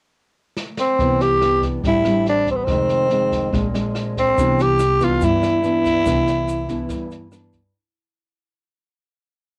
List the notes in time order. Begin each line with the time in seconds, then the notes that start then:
0.56 snare
0.77 C4, snare
0.99 C2 C3 E3 B3 D4, kick, snare
1.20 G4, snare
1.41 E3 B3 D4, cross-stick, snare
1.62 kick, snare
1.84 A1 A2 G3 C4 D4 E4, kick, snare
2.05 G3 C4 D4, cross-stick, snare
2.26 D4, snare
2.47 kick, snare
2.51 C4
2.56 B3
2.64 C4, kick, cross-stick, snare
2.68 F1 F2 D#3 G#3 C4
2.89 snare
3.10 D#3 G#3 C4, snare
3.32 kick, snare
3.52 A#1 A#2 G#3 C4 D4, kick, cross-stick, snare
3.74 G#3 C4 D4, snare
3.95 cross-stick, snare
4.16 C4, kick, snare
4.38 C2 C3 E3 B3 D4, kick, snare, shaker
4.59 G4, snare, shaker
4.79 cross-stick, snare, shaker
5.00 E3 B3 D4 F4, kick, snare, shaker
5.21 G2 E4, kick, snare, shaker
5.43 cross-stick, snare, shaker
5.63 E3 B3 D4, snare, shaker
5.85 kick, snare, shaker
6.06 C2 C3 E3 B3 D4, kick, cross-stick, snare, shaker
6.27 snare, shaker
6.48 snare, shaker
6.69 E3 B3 D4, kick, snare, shaker
6.89 G2, kick, cross-stick, snare, shaker
7.11 snare, shaker
7.31 E3 B3 D4, cross-stick, snare, shaker
7.53 kick, snare, shaker